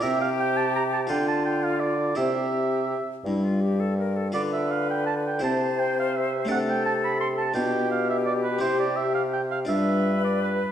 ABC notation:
X:1
M:6/8
L:1/16
Q:3/8=56
K:Cmix
V:1 name="Oboe"
e f g a b a g a g f d2 | e6 z6 | [K:C] d e f g a g a2 g f e2 | ^f g a b c' a g2 =f e d B |
c d e f g f e3 d B2 |]
V:2 name="Flute"
G6 F6 | G6 E F G A B A | [K:C] B6 c6 | A6 G6- |
G6 B6 |]
V:3 name="Harpsichord"
[EB]6 [FA]6 | [Ec]12 | [K:C] [FB]6 [Ec]6 | [A,DA]6 [DF]6 |
[CE]6 [DF]6 |]
V:4 name="Harpsichord" clef=bass
C,6 D,6 | C,4 z2 G,,6 | [K:C] D,6 C,6 | C,6 B,,6 |
C,6 G,,6 |]
V:5 name="Bassoon" clef=bass
C,6 D,6 | C,4 z2 G,,6 | [K:C] D,6 C,6 | C,6 B,,6 |
C,6 G,,6 |]